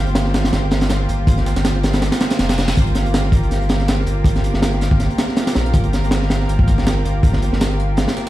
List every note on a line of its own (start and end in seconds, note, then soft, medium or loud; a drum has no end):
0.00 0.51 G1 loud
0.00 8.29 A#3 medium
0.00 8.29 F4 medium
0.00 8.29 G4 medium
0.00 2.74 C5 medium
0.06 closed hi-hat soft
0.15 snare loud
0.15 closed hi-hat medium
0.25 snare soft
0.34 snare loud
0.34 closed hi-hat medium
0.44 snare loud
0.44 closed hi-hat medium
0.53 1.07 G1 loud
0.53 snare loud
0.53 closed hi-hat medium
0.71 snare loud
0.71 snare medium
0.71 closed hi-hat medium
0.81 snare medium
0.81 snare loud
0.81 closed hi-hat medium
0.89 snare loud
0.89 closed hi-hat medium
1.09 1.55 G1 medium
1.09 closed hi-hat medium
1.27 kick loud
1.27 closed hi-hat medium
1.37 snare medium
1.37 closed hi-hat soft
1.46 snare loud
1.46 closed hi-hat medium
1.56 2.10 G1 medium
1.56 snare loud
1.56 snare medium
1.56 closed hi-hat medium
1.64 snare loud
1.64 closed hi-hat medium
1.75 closed hi-hat soft
1.83 snare loud
1.83 closed hi-hat medium
1.93 snare loud
1.93 closed hi-hat medium
2.02 snare loud
2.02 closed hi-hat medium
2.02 reverse cymbal medium
2.12 snare loud
2.12 closed hi-hat medium
2.21 snare loud
2.21 closed hi-hat medium
2.30 snare loud
2.30 closed hi-hat medium
2.39 2.75 F1 loud
2.39 snare loud
2.39 closed hi-hat medium
2.49 snare medium
2.49 snare loud
2.49 closed hi-hat medium
2.54 snare medium
2.54 closed hi-hat medium
2.58 snare loud
2.58 closed hi-hat medium
2.68 snare loud
2.68 closed hi-hat medium
2.77 3.50 G1 loud
2.77 8.29 A#4 medium
2.77 kick loud
2.77 closed hi-hat medium
2.87 closed hi-hat soft
2.95 snare medium
2.95 closed hi-hat medium
3.06 closed hi-hat soft
3.14 snare loud
3.14 closed hi-hat medium
3.24 snare soft
3.32 kick loud
3.32 closed hi-hat medium
3.43 closed hi-hat soft
3.51 4.06 G1 loud
3.51 snare soft
3.51 closed hi-hat medium
3.62 closed hi-hat soft
3.69 snare medium
3.69 snare loud
3.69 closed hi-hat medium
3.80 snare soft
3.80 snare medium
3.88 snare loud
3.88 closed hi-hat medium
4.07 4.53 G1 medium
4.07 closed hi-hat medium
4.24 kick loud
4.24 closed hi-hat medium
4.36 snare medium
4.36 closed hi-hat soft
4.44 closed hi-hat medium
4.54 5.09 G1 medium
4.54 snare medium
4.62 snare loud
4.62 closed hi-hat medium
4.73 closed hi-hat soft
4.81 snare medium
4.81 closed hi-hat medium
4.91 kick medium
5.00 snare medium
5.00 closed hi-hat medium
5.10 closed hi-hat soft
5.18 snare loud
5.18 closed hi-hat medium
5.29 snare soft
5.37 snare loud
5.37 closed hi-hat medium
5.47 snare loud
5.47 closed hi-hat medium
5.55 5.73 A#1 loud
5.55 snare loud
5.55 closed hi-hat medium
5.66 closed hi-hat medium
5.73 6.47 G1 loud
5.73 kick loud
5.73 closed hi-hat medium
5.84 closed hi-hat soft
5.93 snare medium
5.93 closed hi-hat medium
6.04 closed hi-hat soft
6.11 snare loud
6.11 closed hi-hat medium
6.22 snare soft
6.30 snare loud
6.30 closed hi-hat medium
6.40 snare soft
6.49 7.04 G1 loud
6.49 closed hi-hat medium
6.59 kick loud
6.68 kick loud
6.68 snare medium
6.68 closed hi-hat medium
6.78 snare medium
6.87 snare loud
6.87 closed hi-hat medium
7.05 7.51 G1 medium
7.05 closed hi-hat medium
7.23 kick loud
7.23 closed hi-hat medium
7.33 snare medium
7.33 closed hi-hat soft
7.42 closed hi-hat medium
7.53 8.07 G1 medium
7.53 snare medium
7.61 snare loud
7.61 closed hi-hat medium
7.71 closed hi-hat soft
7.80 closed hi-hat medium
7.97 snare loud
7.97 closed hi-hat medium
8.08 snare loud
8.08 closed hi-hat medium
8.17 snare loud
8.17 closed hi-hat medium